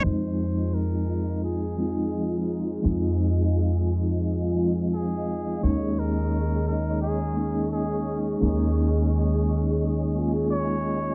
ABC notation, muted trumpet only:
X:1
M:4/4
L:1/16
Q:"Swing 16ths" 1/4=86
K:Fm
V:1 name="Muted trumpet"
c4 B4 A6 z2 | z12 A4 | d2 B4 B2 A4 A3 z | z12 d4 |]